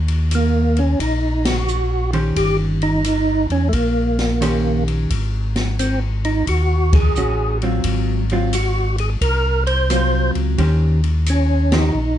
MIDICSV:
0, 0, Header, 1, 5, 480
1, 0, Start_track
1, 0, Tempo, 684151
1, 1661, Time_signature, 4, 2, 24, 8
1, 8547, End_track
2, 0, Start_track
2, 0, Title_t, "Tonewheel organ"
2, 0, Program_c, 0, 16
2, 245, Note_on_c, 0, 58, 75
2, 553, Note_on_c, 0, 61, 82
2, 562, Note_off_c, 0, 58, 0
2, 697, Note_off_c, 0, 61, 0
2, 709, Note_on_c, 0, 63, 84
2, 1034, Note_off_c, 0, 63, 0
2, 1034, Note_on_c, 0, 66, 84
2, 1479, Note_off_c, 0, 66, 0
2, 1662, Note_on_c, 0, 67, 85
2, 1805, Note_off_c, 0, 67, 0
2, 1984, Note_on_c, 0, 63, 101
2, 2434, Note_off_c, 0, 63, 0
2, 2468, Note_on_c, 0, 61, 79
2, 2583, Note_off_c, 0, 61, 0
2, 2589, Note_on_c, 0, 57, 54
2, 2622, Note_off_c, 0, 57, 0
2, 2626, Note_on_c, 0, 58, 71
2, 3395, Note_off_c, 0, 58, 0
2, 4065, Note_on_c, 0, 60, 77
2, 4208, Note_off_c, 0, 60, 0
2, 4384, Note_on_c, 0, 63, 81
2, 4532, Note_off_c, 0, 63, 0
2, 4551, Note_on_c, 0, 66, 82
2, 4873, Note_on_c, 0, 68, 91
2, 4875, Note_off_c, 0, 66, 0
2, 5320, Note_off_c, 0, 68, 0
2, 5997, Note_on_c, 0, 66, 75
2, 6288, Note_off_c, 0, 66, 0
2, 6313, Note_on_c, 0, 68, 76
2, 6383, Note_off_c, 0, 68, 0
2, 6466, Note_on_c, 0, 70, 96
2, 6762, Note_off_c, 0, 70, 0
2, 6782, Note_on_c, 0, 72, 111
2, 7234, Note_off_c, 0, 72, 0
2, 7926, Note_on_c, 0, 61, 76
2, 8239, Note_on_c, 0, 63, 82
2, 8243, Note_off_c, 0, 61, 0
2, 8547, Note_off_c, 0, 63, 0
2, 8547, End_track
3, 0, Start_track
3, 0, Title_t, "Hollow-body jazz guitar"
3, 0, Program_c, 1, 26
3, 1495, Note_on_c, 1, 51, 55
3, 1500, Note_on_c, 1, 61, 48
3, 1502, Note_on_c, 1, 72, 60
3, 1504, Note_on_c, 1, 67, 52
3, 2106, Note_off_c, 1, 51, 0
3, 2109, Note_off_c, 1, 61, 0
3, 2109, Note_off_c, 1, 72, 0
3, 2111, Note_off_c, 1, 67, 0
3, 3094, Note_on_c, 1, 51, 48
3, 3101, Note_on_c, 1, 61, 56
3, 3102, Note_on_c, 1, 67, 60
3, 3104, Note_on_c, 1, 72, 62
3, 3578, Note_off_c, 1, 51, 0
3, 3581, Note_off_c, 1, 61, 0
3, 3582, Note_off_c, 1, 67, 0
3, 3583, Note_off_c, 1, 72, 0
3, 5035, Note_on_c, 1, 61, 47
3, 5036, Note_on_c, 1, 66, 49
3, 5316, Note_off_c, 1, 61, 0
3, 5317, Note_off_c, 1, 66, 0
3, 5352, Note_on_c, 1, 54, 46
3, 5358, Note_on_c, 1, 60, 50
3, 5359, Note_on_c, 1, 65, 47
3, 5763, Note_off_c, 1, 54, 0
3, 5766, Note_off_c, 1, 60, 0
3, 5767, Note_off_c, 1, 65, 0
3, 5836, Note_on_c, 1, 54, 53
3, 5842, Note_on_c, 1, 60, 63
3, 5845, Note_on_c, 1, 65, 75
3, 5973, Note_off_c, 1, 54, 0
3, 5976, Note_off_c, 1, 60, 0
3, 5978, Note_off_c, 1, 65, 0
3, 6947, Note_on_c, 1, 54, 46
3, 6953, Note_on_c, 1, 60, 52
3, 6954, Note_on_c, 1, 65, 48
3, 7424, Note_on_c, 1, 51, 52
3, 7425, Note_off_c, 1, 54, 0
3, 7425, Note_off_c, 1, 65, 0
3, 7426, Note_off_c, 1, 60, 0
3, 7428, Note_on_c, 1, 67, 61
3, 7429, Note_on_c, 1, 61, 51
3, 7433, Note_on_c, 1, 72, 55
3, 7711, Note_off_c, 1, 51, 0
3, 7713, Note_off_c, 1, 61, 0
3, 7713, Note_off_c, 1, 67, 0
3, 7716, Note_off_c, 1, 72, 0
3, 8227, Note_on_c, 1, 51, 58
3, 8228, Note_on_c, 1, 61, 55
3, 8232, Note_on_c, 1, 67, 58
3, 8233, Note_on_c, 1, 72, 57
3, 8369, Note_off_c, 1, 51, 0
3, 8370, Note_off_c, 1, 61, 0
3, 8372, Note_off_c, 1, 67, 0
3, 8372, Note_off_c, 1, 72, 0
3, 8547, End_track
4, 0, Start_track
4, 0, Title_t, "Tonewheel organ"
4, 0, Program_c, 2, 16
4, 0, Note_on_c, 2, 39, 77
4, 671, Note_off_c, 2, 39, 0
4, 699, Note_on_c, 2, 34, 84
4, 1632, Note_off_c, 2, 34, 0
4, 1655, Note_on_c, 2, 31, 73
4, 2429, Note_off_c, 2, 31, 0
4, 2452, Note_on_c, 2, 40, 70
4, 2605, Note_off_c, 2, 40, 0
4, 2619, Note_on_c, 2, 34, 79
4, 3552, Note_off_c, 2, 34, 0
4, 3579, Note_on_c, 2, 32, 71
4, 4512, Note_off_c, 2, 32, 0
4, 4539, Note_on_c, 2, 39, 82
4, 4993, Note_off_c, 2, 39, 0
4, 5022, Note_on_c, 2, 33, 61
4, 5474, Note_off_c, 2, 33, 0
4, 5500, Note_on_c, 2, 32, 83
4, 6433, Note_off_c, 2, 32, 0
4, 6463, Note_on_c, 2, 36, 85
4, 7235, Note_off_c, 2, 36, 0
4, 7261, Note_on_c, 2, 37, 65
4, 7411, Note_off_c, 2, 37, 0
4, 7423, Note_on_c, 2, 39, 84
4, 8355, Note_off_c, 2, 39, 0
4, 8376, Note_on_c, 2, 34, 89
4, 8547, Note_off_c, 2, 34, 0
4, 8547, End_track
5, 0, Start_track
5, 0, Title_t, "Drums"
5, 57, Note_on_c, 9, 51, 43
5, 127, Note_off_c, 9, 51, 0
5, 217, Note_on_c, 9, 44, 50
5, 217, Note_on_c, 9, 51, 62
5, 287, Note_off_c, 9, 44, 0
5, 287, Note_off_c, 9, 51, 0
5, 536, Note_on_c, 9, 51, 41
5, 607, Note_off_c, 9, 51, 0
5, 699, Note_on_c, 9, 36, 30
5, 702, Note_on_c, 9, 51, 54
5, 769, Note_off_c, 9, 36, 0
5, 772, Note_off_c, 9, 51, 0
5, 1019, Note_on_c, 9, 38, 78
5, 1019, Note_on_c, 9, 51, 66
5, 1089, Note_off_c, 9, 38, 0
5, 1089, Note_off_c, 9, 51, 0
5, 1179, Note_on_c, 9, 44, 47
5, 1249, Note_off_c, 9, 44, 0
5, 1496, Note_on_c, 9, 51, 43
5, 1566, Note_off_c, 9, 51, 0
5, 1657, Note_on_c, 9, 36, 32
5, 1658, Note_on_c, 9, 51, 59
5, 1728, Note_off_c, 9, 36, 0
5, 1728, Note_off_c, 9, 51, 0
5, 1975, Note_on_c, 9, 51, 43
5, 2046, Note_off_c, 9, 51, 0
5, 2136, Note_on_c, 9, 44, 54
5, 2136, Note_on_c, 9, 51, 60
5, 2206, Note_off_c, 9, 44, 0
5, 2206, Note_off_c, 9, 51, 0
5, 2456, Note_on_c, 9, 51, 41
5, 2526, Note_off_c, 9, 51, 0
5, 2615, Note_on_c, 9, 51, 59
5, 2617, Note_on_c, 9, 36, 34
5, 2686, Note_off_c, 9, 51, 0
5, 2687, Note_off_c, 9, 36, 0
5, 2938, Note_on_c, 9, 38, 48
5, 2938, Note_on_c, 9, 51, 44
5, 3008, Note_off_c, 9, 38, 0
5, 3008, Note_off_c, 9, 51, 0
5, 3099, Note_on_c, 9, 37, 50
5, 3099, Note_on_c, 9, 44, 47
5, 3099, Note_on_c, 9, 51, 56
5, 3169, Note_off_c, 9, 37, 0
5, 3169, Note_off_c, 9, 44, 0
5, 3169, Note_off_c, 9, 51, 0
5, 3422, Note_on_c, 9, 51, 43
5, 3492, Note_off_c, 9, 51, 0
5, 3580, Note_on_c, 9, 36, 32
5, 3581, Note_on_c, 9, 51, 58
5, 3650, Note_off_c, 9, 36, 0
5, 3651, Note_off_c, 9, 51, 0
5, 3899, Note_on_c, 9, 38, 55
5, 3899, Note_on_c, 9, 51, 41
5, 3969, Note_off_c, 9, 38, 0
5, 3969, Note_off_c, 9, 51, 0
5, 4063, Note_on_c, 9, 44, 57
5, 4063, Note_on_c, 9, 51, 62
5, 4133, Note_off_c, 9, 44, 0
5, 4133, Note_off_c, 9, 51, 0
5, 4382, Note_on_c, 9, 51, 45
5, 4452, Note_off_c, 9, 51, 0
5, 4540, Note_on_c, 9, 51, 59
5, 4541, Note_on_c, 9, 36, 30
5, 4610, Note_off_c, 9, 51, 0
5, 4611, Note_off_c, 9, 36, 0
5, 4861, Note_on_c, 9, 36, 85
5, 4861, Note_on_c, 9, 51, 70
5, 4931, Note_off_c, 9, 36, 0
5, 4931, Note_off_c, 9, 51, 0
5, 5018, Note_on_c, 9, 44, 56
5, 5088, Note_off_c, 9, 44, 0
5, 5344, Note_on_c, 9, 51, 39
5, 5414, Note_off_c, 9, 51, 0
5, 5498, Note_on_c, 9, 51, 66
5, 5502, Note_on_c, 9, 36, 31
5, 5568, Note_off_c, 9, 51, 0
5, 5572, Note_off_c, 9, 36, 0
5, 5820, Note_on_c, 9, 51, 39
5, 5890, Note_off_c, 9, 51, 0
5, 5983, Note_on_c, 9, 44, 54
5, 5983, Note_on_c, 9, 51, 66
5, 6053, Note_off_c, 9, 44, 0
5, 6053, Note_off_c, 9, 51, 0
5, 6302, Note_on_c, 9, 51, 43
5, 6372, Note_off_c, 9, 51, 0
5, 6464, Note_on_c, 9, 36, 33
5, 6465, Note_on_c, 9, 51, 59
5, 6534, Note_off_c, 9, 36, 0
5, 6535, Note_off_c, 9, 51, 0
5, 6784, Note_on_c, 9, 51, 48
5, 6854, Note_off_c, 9, 51, 0
5, 6945, Note_on_c, 9, 37, 55
5, 6945, Note_on_c, 9, 44, 55
5, 6945, Note_on_c, 9, 51, 60
5, 7015, Note_off_c, 9, 37, 0
5, 7015, Note_off_c, 9, 44, 0
5, 7015, Note_off_c, 9, 51, 0
5, 7262, Note_on_c, 9, 51, 41
5, 7332, Note_off_c, 9, 51, 0
5, 7424, Note_on_c, 9, 51, 55
5, 7425, Note_on_c, 9, 36, 33
5, 7494, Note_off_c, 9, 51, 0
5, 7495, Note_off_c, 9, 36, 0
5, 7742, Note_on_c, 9, 51, 38
5, 7813, Note_off_c, 9, 51, 0
5, 7902, Note_on_c, 9, 44, 59
5, 7902, Note_on_c, 9, 51, 58
5, 7972, Note_off_c, 9, 44, 0
5, 7972, Note_off_c, 9, 51, 0
5, 8222, Note_on_c, 9, 38, 76
5, 8222, Note_on_c, 9, 51, 59
5, 8292, Note_off_c, 9, 38, 0
5, 8292, Note_off_c, 9, 51, 0
5, 8547, End_track
0, 0, End_of_file